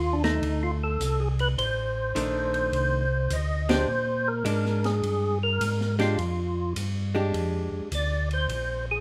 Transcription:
Already playing: D#2 F4
0.13 D4
0.24 A3 D#4, snare, ride
0.42 D2, ride
0.63 F4
0.83 A4
1.00 C2, hi-hat pedal, ride
1.20 G#4
1.39 B4, ride
1.58 A1 C5, ride
2.15 A#1 D#3 A3 D4, hi-hat pedal, ride
2.54 ride
2.72 C2, ride
3.30 D2 D#5, hi-hat pedal, ride
3.69 G#3 D4 G4 C5, snare, ride
3.88 A#2
4.28 A#4
4.45 G#2 G#3 D4, hi-hat pedal, ride
4.66 snare
4.84 G#4, snare, ride
5.03 G2, ride
5.43 A#4
5.61 G#2, hi-hat pedal, ride
5.81 snare
5.99 G#3 D4 F4 G4, snare, ride
6.18 F2, ride
6.76 G2, hi-hat pedal, ride
7.15 G#3 D4 G4
7.34 F2, ride
7.72 F2
7.91 D2 D5, hi-hat pedal, ride
8.31 C5, ride
8.48 A#1, ride
8.91 G#4

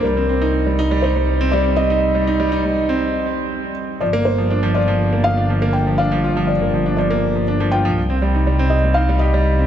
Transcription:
0.03 C2 G3 A#4
0.17 C4
0.29 C4
0.42 D#4
0.66 G3
0.79 D#4
0.91 G3
1.02 D#4 C5
1.16 G3
1.41 C4
1.52 G3 D5
1.65 C4
1.76 C4 D#5
1.90 D#4
2.15 G3
2.27 D#4
2.40 G3
2.52 D#4
2.64 G3
2.89 C4
4.01 G1 F3 D5
4.13 A#3
4.25 C5
4.38 F3
4.50 D4
4.63 F3
4.74 F4 D5
4.88 F3
5.13 A#3
5.24 F3 F5
5.37 D4
5.50 F3
5.62 A#3
5.73 G5
5.87 F3
5.98 D4 F5
6.12 F3
6.24 F4
6.37 F3
6.47 D5
6.62 A#3
6.74 F3
6.86 D4
6.97 F3 D5
7.11 A#3
7.36 F3
7.48 D4
7.60 F3
7.71 F4 G5
7.85 F3
7.97 C2
8.10 C4
8.22 G3
8.35 D#4
8.47 G3
8.59 C4
8.70 D#5
8.84 G3
8.94 D#4 F5
9.09 G3
9.19 G4 D#5
9.34 G3
9.59 C4

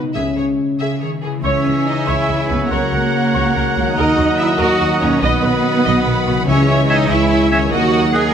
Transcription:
Already playing: C#3 B3 D#4 F#4
0.02 G#3
0.07 E4
0.13 C#2 C#3 G#4 E5
0.17 C#4
0.36 C#3 G#4 C#5
0.79 C#3 G#4 E5
1.01 D#3 G#4 C#5
1.21 E3 G#4
1.26 C#3
1.30 G#3
1.35 E4
1.39 G#4
1.43 C#2 C#3 E3 G#3 C#4 G#4 C#5 E5 G#5
1.65 C#2 G#4
1.86 D#4 D#5
2.07 C#2 E4 C#5 E5
2.28 C#2 G#4
2.48 C#2 B3 E4 B4
2.53 C#3
2.58 F#3
2.62 F#4
2.67 A#4 F#5 A#5
2.71 C#2 F#3 A#3 F#4 C#5 F#5
2.92 C#2 A#4
3.33 C#2 C#5
3.54 C#2 A#4
3.75 C#2 F#4
3.80 D#3
3.84 F#3
3.88 D#4
3.93 D#3 D#4 A#4 D#5
3.98 D#2 D#5
4.17 D#2 F#4
4.37 E4 E5
4.58 D#2 F#4 A#4 F#5
4.79 D#2 F#4
5.01 D#2 B2 C#4 D#4 C#5
5.10 F#3
5.14 D#4
5.18 B3 F#4 B4 D#5
5.23 B1 F#3 B3 F#5 B5
5.42 B1 B4
5.84 B1 D#5
6.05 B1 B4
6.26 B1 C#3 F#4
6.35 C#4
6.39 E4
6.43 C#2 E3 G#4 C#5 E5
6.47 C#3 G#3 C#4 E4 C#5 E5 G#5
6.67 C#5 E5 G#5
6.87 D#4 C#5 D#5 E5 G#5
7.08 C#2 E4 C#5 E5 G#5
7.29 C#5 E5 G#5
7.50 C#4 C#5 E5 G#5
7.54 D#3 C#5
7.59 A#3
7.63 D#4
7.68 F#4 F#5
7.72 D#2 D#3 F#3 A#3 F#4 A#4 D#5 F#5
7.92 A#4 D#5 F#5
8.13 G#4 A#4 D#5 F#5 G#5

